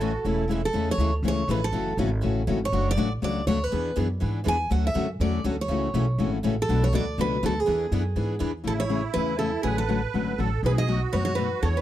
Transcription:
Already playing: upright bass A1, steel-string acoustic guitar A4
0.01 steel-string acoustic guitar C#3 E3 G#3 A3 C#4 E4 G#4 A4, accordion F#4
0.24 upright bass E1, steel-string acoustic guitar C#3 E3 G#3 A3 C#4 E4 G#4 A4, accordion E4
0.48 steel-string acoustic guitar C#3 E3 G#3 A3 C#4 E4 G#4
0.52 steel-string acoustic guitar A4
0.65 steel-string acoustic guitar A4
0.74 upright bass E2, steel-string acoustic guitar C#3 E3 G#3 A3 C#4 E4 G#4 A4
0.91 steel-string acoustic guitar C#5
0.98 upright bass D2, steel-string acoustic guitar C#3 E3 G#3 A3 C#4 E4 G#4 A4
1.23 upright bass C#2, steel-string acoustic guitar C#3 E3 G#3 A3 C#4 E4 G#4 A4
1.28 steel-string acoustic guitar C#5
1.48 upright bass A1, steel-string acoustic guitar C#3 E3 G#3 A3 C#4 E4 G#4 A4 B4
1.64 steel-string acoustic guitar A4
1.72 upright bass F#1, steel-string acoustic guitar C#3 E3 F#3 A3 C#4 E4 F#4 A4
1.97 upright bass G#1, steel-string acoustic guitar C#3 E3 F#3 A3 C#4 E4 F#4 A4
2.21 upright bass A1, steel-string acoustic guitar C#3 E3 F#3 A3 C#4 E4 F#4 A4
2.47 upright bass G#1, steel-string acoustic guitar C#3 E3 F#3 A3 C#4 E4 F#4 A4
2.65 steel-string acoustic guitar C#5
2.72 upright bass F#1, steel-string acoustic guitar C#3 F#3 A3 D4 F#4 C#5
2.91 steel-string acoustic guitar D5
2.96 upright bass A1, steel-string acoustic guitar C#3 F#3 A3 D4 F#4 C#5
3.22 upright bass C#2, steel-string acoustic guitar C#3 F#3 A3 D4 F#4 C#5 D5
3.47 upright bass D2, steel-string acoustic guitar C#3 F#3 A3 D4 F#4 C#5
3.64 steel-string acoustic guitar B4
3.72 upright bass E2, steel-string acoustic guitar E3 B3 D4 G#4 B4
3.96 upright bass F#2, steel-string acoustic guitar E3 B3 D4 G#4 B4
4.20 upright bass G#2, steel-string acoustic guitar E3 B3 D4 G#4 B4
4.46 upright bass E2, steel-string acoustic guitar E3 B3 D4 G#4 B4 G#5
4.70 upright bass D2, steel-string acoustic guitar D3 F#3 A3 C#4 F#4 A4 F#5
4.87 steel-string acoustic guitar E5
4.95 upright bass F#2, steel-string acoustic guitar D3 F#3 A3 C#4 F#4 A4
5.20 upright bass E2, steel-string acoustic guitar D3 F#3 A3 C#4 F#4 A4 D5
5.44 upright bass D2, steel-string acoustic guitar D3 F#3 A3 C#4 F#4 A4
5.61 steel-string acoustic guitar C#5
5.68 upright bass C#2, steel-string acoustic guitar C#3 E3 F#3 A3 C#4 E4 F#4 A4
5.94 upright bass B1, steel-string acoustic guitar C#3 E3 F#3 A3 C#4 E4 F#4 A4
6.18 upright bass G#1, steel-string acoustic guitar C#3 E3 F#3 A3 C#4 E4 F#4 A4
6.43 upright bass A1, steel-string acoustic guitar C#3 E3 F#3 A3 C#4 E4 F#4 A4
6.62 steel-string acoustic guitar A4
6.68 upright bass B1, steel-string acoustic guitar B2 F#3 A3 D4 F#4 B4
6.84 steel-string acoustic guitar C#5
6.93 upright bass D2, steel-string acoustic guitar B2 F#3 A3 D4 F#4 B4 D5
7.18 upright bass C#2, steel-string acoustic guitar B2 F#3 A3 D4 F#4 B4
7.43 upright bass D2, steel-string acoustic guitar B2 F#3 A3 D4 F#4 A4 B4
7.60 steel-string acoustic guitar G#4
7.67 upright bass E2, steel-string acoustic guitar E3 B3 D4 G#4 B4
7.92 upright bass F#2, steel-string acoustic guitar E3 B3 D4 G#4 B4
8.16 upright bass G#2, steel-string acoustic guitar E3 B3 D4 G#4 B4
8.40 upright bass E2, steel-string acoustic guitar E3 B3 D4 G#4 B4
8.64 upright bass A1, steel-string acoustic guitar C#3 E3 A3 C#4 G#4 A4, accordion E4
8.80 steel-string acoustic guitar C#5
8.89 steel-string acoustic guitar C#3 E3 A3 C#4 G#4
9.14 upright bass E2, steel-string acoustic guitar C#3 E3 A3 C#4 G#4 B4
9.39 steel-string acoustic guitar C#3 E3 A3 C#4 G#4 A4
9.63 upright bass A1, steel-string acoustic guitar D3 F#3 A3 C#4 F#4 G#4, accordion B4
9.78 steel-string acoustic guitar A4
9.89 steel-string acoustic guitar D3 F#3 A3 C#4 F#4
10.14 upright bass G#1, steel-string acoustic guitar D3 F#3 A3 C#4 F#4
10.38 upright bass A1, steel-string acoustic guitar D3 F#3 A3 C#4 F#4, accordion A4
10.63 upright bass B1, steel-string acoustic guitar B2 F#3 A3 D#4 F#4 B4, accordion G#4
10.78 steel-string acoustic guitar D#5
10.87 steel-string acoustic guitar B2 F#3 A3 D#4 F#4, accordion F#4
11.13 upright bass F#2, steel-string acoustic guitar B2 F#3 A3 D#4 F#4 B4 C#5
11.25 steel-string acoustic guitar C#5
11.35 steel-string acoustic guitar B2 F#3 A3 D#4 F#4 B4
11.62 upright bass E2, steel-string acoustic guitar E3 B3 D4 G#4 A4, accordion C#5
11.77 steel-string acoustic guitar B4

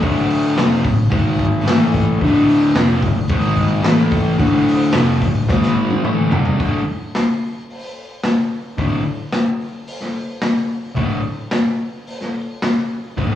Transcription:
0.00 distorted electric guitar D2 A2 D3, kick, open hi-hat
0.30 open hi-hat
0.56 distorted electric guitar F2 C3 F3, snare, open hi-hat
0.83 distorted electric guitar D2 A2, kick, open hi-hat
1.10 distorted electric guitar G#2 D#3 G#3, kick, open hi-hat
1.39 kick, open hi-hat
1.64 distorted electric guitar A2 E3 A3, snare, open hi-hat
1.94 kick, open hi-hat
2.21 distorted electric guitar D2 A2 D3, kick, open hi-hat
2.48 open hi-hat
2.75 distorted electric guitar F2 C3 F3, snare, open hi-hat
3.02 distorted electric guitar D2 A2, kick, open hi-hat
3.28 distorted electric guitar G#2 D#3, kick, open hi-hat
3.32 distorted electric guitar G#3
3.57 kick, open hi-hat
3.83 distorted electric guitar A2 E3 A3, snare, open hi-hat
4.12 kick, open hi-hat
4.38 distorted electric guitar D2 A2 D3, kick, open hi-hat
4.68 open hi-hat
4.93 distorted electric guitar F2 C3 F3, snare, open hi-hat
5.22 distorted electric guitar D2 A2, kick, open hi-hat
5.49 distorted electric guitar G#2 D#3 G#3, kick, snare
5.63 snare
5.90 high tom
6.04 distorted electric guitar A2 E3 A3, mid tom
6.30 distorted electric guitar C3 G3 C4, floor tom
6.45 floor tom
6.57 distorted electric guitar D2 A2 D3, kick, open hi-hat
7.15 snare, open hi-hat
7.70 open hi-hat
8.24 snare, open hi-hat
8.78 distorted electric guitar D2 A2 D3, kick, open hi-hat
9.32 snare, open hi-hat
9.87 open hi-hat
10.00 snare
10.41 snare, open hi-hat
10.95 distorted electric guitar D2 A2 D3, kick, open hi-hat
11.51 snare, open hi-hat
12.07 open hi-hat
12.21 snare
12.62 snare, open hi-hat
13.17 distorted electric guitar D2 A2 D3, kick, open hi-hat

